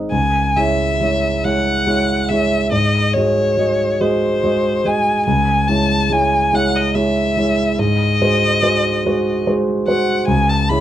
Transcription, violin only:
0.11 0.58 G#5 medium
0.57 1.46 E5 medium
1.44 2.30 F#5 medium
2.28 2.71 E5 medium
2.72 3.15 D#5 medium
3.14 4.02 C#5 medium
4.00 4.87 C5 medium
4.86 5.25 G#5 medium
5.26 5.69 G#5 medium
5.68 6.14 A5 medium
6.12 6.56 G#5 medium
6.55 6.77 F#5 medium
6.76 6.96 D#5 medium
6.95 7.80 E5 medium
7.79 9.47 D#5 medium
9.88 10.26 F#5 medium
10.28 10.50 G#5 medium
10.49 10.71 A5 medium
10.69 10.80 B5 medium

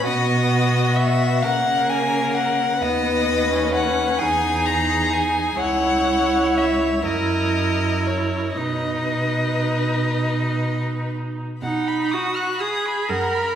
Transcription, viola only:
0.07 1.43 B3 soft
1.41 2.80 A#3 soft
2.81 3.49 B3 soft
3.52 4.21 C#4 soft
4.20 5.59 D#4 soft
5.59 7.01 E4 soft
7.05 8.59 E4 soft
8.58 11.43 D#4 soft
11.65 12.14 D#4 soft
12.13 12.62 F#4 soft
12.60 13.11 G#4 soft
13.09 13.55 A#4 soft

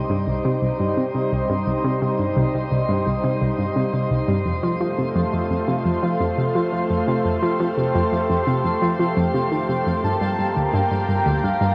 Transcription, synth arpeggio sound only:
0.10 0.26 G2 medium
0.27 0.40 C2 medium
0.45 0.57 C3 medium
0.62 0.75 C2 medium
0.80 0.92 G2 medium
0.97 1.05 C3 medium
1.15 1.27 C3 medium
1.32 1.44 C2 medium
1.49 1.66 G2 medium
1.67 1.79 C2 medium
1.84 1.97 C3 medium
2.02 2.09 C3 loud
2.19 2.32 G2 medium
2.37 2.44 C2 loud
2.54 2.70 C2 medium
2.72 2.84 C2 medium
2.89 3.06 G2 loud
3.06 3.19 C2 medium
3.24 3.36 C3 medium
3.41 3.54 C2 medium
3.59 3.71 G2 medium
3.76 3.84 C3 medium
3.94 4.06 C3 medium
4.11 4.23 C2 medium
4.28 4.45 G2 loud
4.46 4.58 F2 medium
4.63 4.76 F3 loud
4.81 4.88 F3 loud
4.98 5.11 C3 medium
5.16 5.23 F2 loud
5.33 5.49 F2 medium
5.51 5.63 F2 medium
5.68 5.85 C3 medium
5.85 5.98 F2 medium
6.03 6.15 F3 loud
6.20 6.33 F2 medium
6.38 6.50 C3 medium
6.55 6.63 F3 medium
6.73 6.85 F3 medium
6.90 7.03 F2 medium
7.08 7.24 C3 medium
7.25 7.37 F2 medium
7.42 7.55 F3 medium
7.60 7.67 F3 loud
7.78 7.90 C3 medium
7.95 8.02 F2 loud
8.12 8.29 F2 medium
8.30 8.42 F2 medium
8.47 8.64 C3 medium
8.64 8.77 F2 medium
8.82 8.94 F3 loud
8.99 9.16 F3 loud
9.17 9.29 F2 loud
9.34 9.47 C3 medium
9.52 9.64 D#3 medium
9.69 9.82 C3 medium
9.87 10.03 F2 medium
10.04 10.16 G2 medium
10.21 10.34 G2 medium
10.39 10.51 G2 medium
10.56 10.69 D2 medium
10.74 10.81 G2 loud
10.91 11.07 G2 medium
11.09 11.21 G2 medium
11.26 11.43 D2 medium
11.44 11.56 G2 medium
11.61 11.73 G2 loud

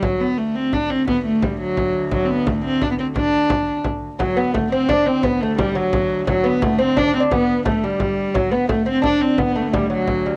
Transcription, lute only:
4.19 4.37 F#3 medium
4.37 4.53 B3 medium
4.54 4.72 A3 medium
4.72 4.90 C4 medium
4.89 5.07 D4 medium
5.06 5.24 C4 medium
5.24 5.42 B3 medium
5.43 5.60 A3 medium
5.59 5.75 G3 medium
5.75 6.26 F#3 medium
6.27 6.45 F#3 medium
6.44 6.78 B3 medium
6.79 6.95 C4 medium
6.97 7.06 D4 medium
7.08 7.19 D4 medium
7.20 7.31 D4 medium
7.32 7.65 B3 medium
7.65 7.83 A3 medium
7.84 8.34 G3 medium
8.34 8.52 F#3 medium
8.51 8.68 B3 medium
8.69 8.85 A3 medium
8.86 9.04 C4 medium
9.02 9.38 D4 medium
9.38 9.55 B3 medium
9.55 9.73 A3 medium
9.73 9.89 G3 medium
9.90 10.26 F#3 medium
10.26 10.36 G3 medium

